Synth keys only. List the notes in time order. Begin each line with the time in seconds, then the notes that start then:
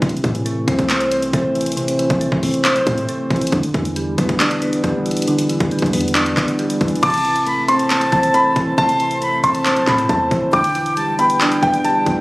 0.02 C3
0.24 E3
0.45 A3
0.68 C4
0.90 C5
1.11 C4
1.34 A3
1.55 E3
1.77 C3
1.99 E3
2.21 A3
2.43 C4
2.65 C5
2.87 C4
3.09 A3
3.31 E3
3.53 D3
3.74 E3
3.96 G3
4.18 B3
4.40 D4
4.62 B3
4.83 G3
5.06 E3
5.28 D3
5.49 E3
5.72 G3
5.93 B3
6.15 D4
6.37 B3
6.59 G3
6.81 E3
7.02 C3
7.25 E3
7.46 A3
7.68 C4
7.91 C5
8.12 C4
8.34 A3
8.56 E3
8.77 C3
9.00 E3
9.21 A3
9.44 C4
9.65 C5
9.88 C4
10.09 A3
10.31 E3
10.53 D3
10.75 E3
10.97 G3
11.19 B3
11.41 D4
11.63 B3
11.84 G3
12.06 E3